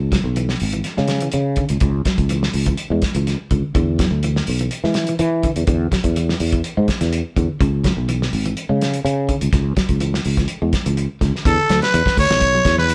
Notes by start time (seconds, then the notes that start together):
Already playing: C#2
0.12 F#3, kick, snare, closed hi-hat
0.24 B1
0.36 E3, closed hi-hat
0.49 snare
0.60 G#1, open hi-hat
0.73 E3, closed hi-hat
0.84 snare, closed hi-hat
0.97 C#3 G#3, snare
1.08 snare, closed hi-hat
1.20 E3, closed hi-hat
1.32 C#3, closed hi-hat
1.56 D3, kick, closed hi-hat
1.69 C#2, closed hi-hat
1.80 C#2, muted clean electric guitar stroke, kick, closed hi-hat
2.05 F#3, muted fretless electric bass stroke, kick, snare, closed hi-hat
2.18 C#2, kick, closed hi-hat
2.29 E3, closed hi-hat
2.43 snare
2.53 C#2, open hi-hat
2.66 E3, kick, closed hi-hat
2.77 closed hi-hat
2.90 E2 G#3
3.02 kick, snare, closed hi-hat
3.15 C#2 E3, closed hi-hat
3.27 snare, closed hi-hat
3.51 C#2 D3, kick, closed hi-hat
3.75 E2 D3, kick, closed hi-hat
3.99 F#3, kick, snare, closed hi-hat
4.11 D2
4.23 E3, closed hi-hat
4.36 snare
4.47 B1, open hi-hat
4.59 E3, closed hi-hat
4.71 closed hi-hat
4.84 E3 G#3, snare
4.94 snare, closed hi-hat
5.07 E3, closed hi-hat
5.19 E3, closed hi-hat
5.43 D3, kick, closed hi-hat
5.56 E2, closed hi-hat
5.67 E2 D3, kick, closed hi-hat
5.92 F#3, kick, snare, closed hi-hat
6.04 E2, kick, closed hi-hat
6.16 E3, closed hi-hat
6.29 snare
6.40 E2, open hi-hat
6.52 E3, kick, closed hi-hat
6.64 closed hi-hat
6.77 G#2 G#3
6.88 kick, snare, closed hi-hat
7.01 E2 E3, snare, closed hi-hat
7.13 closed hi-hat
7.36 E2 D3, kick, closed hi-hat
7.60 C#2 C#3, kick, closed hi-hat
7.84 F#3, kick, snare, closed hi-hat
7.97 B1
8.09 E3, closed hi-hat
8.22 snare
8.33 G#1, open hi-hat
8.45 E3, closed hi-hat
8.57 closed hi-hat
8.69 C#3 G#3
8.81 snare, closed hi-hat
8.93 closed hi-hat
9.05 C#3, closed hi-hat
9.29 D3, kick, closed hi-hat
9.41 C#2, closed hi-hat
9.53 C#2, muted clean electric guitar stroke, kick, snare, closed hi-hat
9.77 F#3, kick, snare, closed hi-hat
9.89 C#2, kick, closed hi-hat
10.00 E3, closed hi-hat
10.14 snare
10.24 C#2, open hi-hat
10.37 E3, kick, snare, closed hi-hat
10.48 closed hi-hat
10.62 E2 G#3
10.73 kick, snare, closed hi-hat
10.86 C#2 E3, closed hi-hat
10.97 closed hi-hat
11.21 C#2 D3, kick, snare, closed hi-hat
11.36 snare
11.45 E2 D3 A4, kick, closed hi-hat
11.69 D2 F#3, snare, closed hi-hat
11.82 B4, snare, closed hi-hat
11.94 E2 E3, closed hi-hat
12.06 muted fretless electric bass stroke, kick, snare
12.17 D2 C#5, kick, open hi-hat
12.30 B1 E3, snare, closed hi-hat
12.41 kick, closed hi-hat
12.55 F#3
12.65 E2, kick, snare, closed hi-hat
12.78 E3 B4, snare
12.89 closed hi-hat